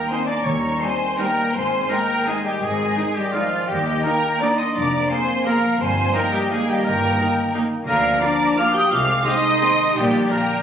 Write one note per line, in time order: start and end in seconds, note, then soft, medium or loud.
0.00 1.50 D#3 medium
0.00 0.41 A#3 medium
0.00 0.10 G5 medium
0.09 0.18 A#3 medium
0.09 0.28 C4 medium
0.09 0.18 D#4 medium
0.09 0.28 C5 medium
0.09 0.28 G#5 medium
0.09 0.28 C6 medium
0.27 0.45 D4 medium
0.27 0.44 D5 medium
0.27 0.46 D5 medium
0.27 0.44 A#5 medium
0.27 0.44 D6 medium
0.44 0.74 D#2 medium
0.44 0.75 D#2 medium
0.44 0.96 D#3 medium
0.44 1.54 G3 medium
0.44 0.80 C#4 medium
0.44 0.82 C#5 medium
0.44 0.80 C#5 medium
0.44 0.80 A#5 medium
0.44 0.80 C#6 medium
0.80 0.89 G3 medium
0.80 1.18 C4 medium
0.80 0.89 D#4 medium
0.80 1.17 C5 medium
0.80 1.18 C5 medium
0.80 1.19 G#5 medium
0.80 1.18 C6 medium
1.18 1.27 G3 medium
1.18 1.54 A#3 medium
1.18 1.27 D#4 medium
1.18 1.56 A#4 medium
1.18 1.54 A#4 medium
1.18 1.53 G5 medium
1.18 1.54 A#5 medium
1.53 1.83 G#1 medium
1.53 1.84 G#2 medium
1.53 3.65 D#3 medium
1.53 3.65 G#3 medium
1.53 1.90 C4 medium
1.53 1.90 C5 medium
1.53 1.91 C5 medium
1.53 1.90 G#5 medium
1.53 1.90 C6 medium
1.89 1.98 G#3 medium
1.89 2.27 A#3 medium
1.89 1.98 D#4 medium
1.89 2.28 A#4 medium
1.89 2.26 A#4 medium
1.89 2.28 G5 medium
1.89 2.27 A#5 medium
2.26 2.45 G#3 medium
2.26 2.35 G#3 medium
2.26 2.35 D#4 medium
2.26 2.44 G#4 medium
2.26 2.46 G#4 medium
2.26 2.44 D#5 medium
2.26 2.45 G#5 medium
2.43 2.61 G3 medium
2.43 2.61 G4 medium
2.43 2.62 G4 medium
2.43 2.51 D#5 medium
2.43 2.62 G5 medium
2.61 2.91 G#1 medium
2.61 2.91 G#2 medium
2.61 3.14 G#3 medium
2.61 3.15 G#4 medium
2.61 3.16 G#4 medium
2.61 2.91 D#5 medium
2.61 3.15 G#5 medium
2.97 3.05 G#3 medium
2.97 3.05 D#4 medium
3.14 3.34 G3 medium
3.14 3.34 G4 medium
3.14 3.33 D#5 medium
3.14 3.34 G5 medium
3.32 3.69 F3 medium
3.32 3.41 G#3 medium
3.32 3.42 D#4 medium
3.32 3.71 F4 medium
3.32 3.69 F4 medium
3.32 3.69 D5 medium
3.32 3.68 F5 medium
3.68 3.98 D#2 medium
3.68 4.73 D#3 medium
3.68 4.04 G3 medium
3.68 5.62 A#3 medium
3.68 4.03 G4 medium
3.68 4.05 G4 medium
3.68 4.03 D#5 medium
3.68 4.04 G5 medium
4.03 4.41 A#3 medium
4.03 4.13 A#3 medium
4.03 4.13 D#4 medium
4.03 4.40 A#4 medium
4.03 4.42 A#4 medium
4.03 4.41 G5 medium
4.03 4.40 A#5 loud
4.39 4.49 A#3 medium
4.39 4.58 D4 loud
4.39 4.49 D#4 medium
4.39 4.59 D5 medium
4.39 4.48 D5 medium
4.39 4.57 A#5 medium
4.39 4.47 D6 loud
4.57 4.75 D#4 medium
4.57 4.74 D#5 medium
4.57 4.74 C6 medium
4.57 4.65 D#6 medium
4.74 5.03 F1 medium
4.74 5.03 F2 medium
4.74 6.50 F3 medium
4.74 5.09 D4 medium
4.74 5.09 D5 medium
4.74 5.11 D5 medium
4.74 5.09 A#5 medium
4.74 5.09 D6 loud
5.08 5.17 A#3 medium
5.08 5.46 C4 medium
5.08 5.18 G#4 medium
5.08 5.45 C5 medium
5.08 5.45 G#5 medium
5.08 5.45 C6 loud
5.45 5.79 A#3 medium
5.45 5.53 A#3 medium
5.45 5.54 G#4 medium
5.45 5.79 A#4 medium
5.45 5.79 F5 medium
5.45 5.80 A#5 loud
5.78 6.08 G1 medium
5.78 6.08 G2 medium
5.78 7.83 A#3 medium
5.78 6.13 C4 medium
5.78 6.14 C5 medium
5.78 6.14 G#5 medium
5.78 6.14 C6 loud
6.13 6.32 A#3 medium
6.13 6.22 A#3 medium
6.13 6.22 D#4 medium
6.13 6.33 A#4 loud
6.13 6.34 A#4 medium
6.13 6.33 G5 medium
6.13 6.33 A#5 loud
6.31 6.50 G3 medium
6.31 6.54 G4 medium
6.31 6.51 G4 medium
6.31 6.51 D#5 medium
6.31 6.50 G5 medium
6.50 7.88 D#3 medium
6.50 6.58 G#3 medium
6.50 6.59 A#3 medium
6.50 6.59 D#4 medium
6.50 6.67 G#4 medium
6.50 6.70 G#4 medium
6.50 6.68 F5 medium
6.50 6.68 G#5 loud
6.67 6.84 G3 medium
6.67 6.84 G4 medium
6.67 6.86 G4 medium
6.67 6.85 D#5 medium
6.67 6.84 G5 loud
6.83 7.12 G1 medium
6.83 7.13 G2 medium
6.83 7.55 A#3 medium
6.83 7.53 A#4 medium
6.83 7.54 A#4 medium
6.83 7.53 G5 medium
6.83 7.54 A#5 loud
7.19 7.27 A#3 medium
7.19 7.27 D#4 medium
7.54 7.62 A#3 medium
7.54 7.62 D#4 medium
7.86 8.16 D2 medium
7.86 8.16 D3 medium
7.86 8.89 F3 medium
7.86 8.89 A#3 medium
7.86 8.20 A#3 loud
7.86 8.22 A#4 loud
7.86 8.20 A#4 loud
7.86 8.20 F5 loud
7.86 8.19 A#5 loud
8.20 8.30 A#3 medium
8.20 8.57 D4 loud
8.20 8.30 F4 medium
8.20 8.56 D5 loud
8.20 8.57 D5 loud
8.20 8.57 A#5 loud
8.20 8.57 D6 loud
8.56 8.65 A#3 medium
8.56 8.74 F4 loud
8.56 8.65 F4 medium
8.56 8.74 F5 loud
8.56 8.65 F5 loud
8.56 8.75 D6 loud
8.56 8.75 F6 loud
8.72 8.91 G4 loud
8.72 8.88 G5 loud
8.72 8.91 G5 loud
8.72 8.91 D#6 loud
8.72 8.91 G6 loud
8.89 9.20 C2 loud
8.89 9.19 C3 medium
8.89 9.97 D#3 medium
8.89 9.97 G#3 medium
8.89 9.25 F4 loud
8.89 9.24 F5 loud
8.89 9.25 F5 loud
8.89 9.26 D6 loud
8.89 9.26 F6 loud
9.24 9.34 C4 medium
9.24 9.94 D#4 loud
9.24 9.34 G#4 medium
9.24 9.98 D#5 loud
9.24 9.97 D#5 loud
9.24 9.96 C6 loud
9.24 9.97 D#6 loud
9.62 9.70 C4 medium
9.62 9.70 G#4 medium
9.95 10.25 A#1 loud
9.95 10.24 A#2 loud
9.95 10.62 D3 medium
9.95 10.31 G3 loud
9.95 10.62 A#3 medium
9.95 10.31 G4 loud
9.95 10.30 G4 loud
9.95 10.31 D5 loud
9.95 10.31 G5 loud
10.30 10.62 A#3 loud
10.30 10.39 D4 medium
10.30 10.39 G4 medium
10.30 10.62 A#4 loud
10.30 10.62 G5 loud
10.30 10.62 A#5 loud